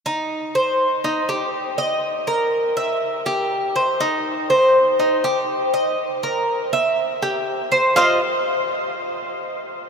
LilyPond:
\new Staff \with { instrumentName = "Cuban tres" } { \time 4/4 \key c \phrygian \tempo 4 = 121 ees'4 c''4 ees'8 g'4 ees''8~ | ees''8 bes'4 e''4 g'4 c''8 | ees'4 c''4 ees'8 g'4 ees''8~ | ees''8 bes'4 e''4 g'4 c''8 |
<f' c'' ees''>8 r2. r8 | }